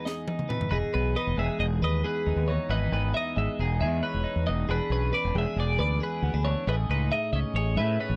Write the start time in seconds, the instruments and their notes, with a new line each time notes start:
Already playing: clean electric guitar E2 G#3 B3 D#4
0.05 clean electric guitar G#4 D#5, snare
0.28 clean electric guitar D#4, high tom
0.39 mid tom
0.49 clean electric guitar E2 B4, mid tom
0.61 floor tom
0.71 fingered electric bass E1, clean electric guitar E2 D#4 G#4 B4
0.94 fingered electric bass B1, clean electric guitar B3 B4
1.16 clean electric guitar D#4 B4 D#5
1.27 fingered electric bass E1
1.37 fingered electric bass E1, clean electric guitar G#3 G#4 E5
1.59 fingered electric bass E1, clean electric guitar G#4 D#5
1.82 fingered electric bass D#2, clean electric guitar B4 D#5
2.04 clean electric guitar E2 G#4 B4
2.27 fingered electric bass D#2, clean electric guitar D#4
2.36 fingered electric bass D#2
2.48 clean electric guitar E2 D#4 C#5
2.69 fingered electric bass G#1, clean electric guitar E2 D#4 B4 D#5
2.92 fingered electric bass G#1, clean electric guitar B3 B4
3.14 clean electric guitar D#4 D#5 E5
3.36 fingered electric bass G#1, clean electric guitar G#3 D#5 E5
3.59 fingered electric bass E1, clean electric guitar D#4 G#4
3.81 fingered electric bass E2, clean electric guitar G#4 E5
4.03 clean electric guitar E2 B4 C#5
4.14 fingered electric bass E1
4.24 clean electric guitar D#4
4.36 fingered electric bass E2
4.47 fingered electric bass E1, clean electric guitar E2 D#4 D#5
4.69 fingered electric bass E1, clean electric guitar E2 D4 G#4 B4
4.90 fingered electric bass B1, clean electric guitar C#4 B4
5.13 clean electric guitar D4 B4 D5
5.25 fingered electric bass E1
5.35 fingered electric bass E1, clean electric guitar G#3 G#4 E5
5.56 fingered electric bass E1, clean electric guitar G#4 D5
5.79 fingered electric bass D2, clean electric guitar B4 D5
6.00 clean electric guitar E2 G#4 B4
6.22 fingered electric bass D2, clean electric guitar B3
6.34 fingered electric bass D2, clean electric guitar D4
6.44 clean electric guitar E2 D4 C#5
6.67 fingered electric bass A1, clean electric guitar A2 G#4 B4 D#5
6.89 fingered electric bass C#2, clean electric guitar D#4 B4
7.12 clean electric guitar G#4 D#5 E5
7.33 fingered electric bass C#2, clean electric guitar C#4 D#5 E5
7.54 fingered electric bass A1, clean electric guitar G#4 C#5
7.76 fingered electric bass A2, clean electric guitar B4 E5
8.00 clean electric guitar A2 B4 C#5
8.10 fingered electric bass A1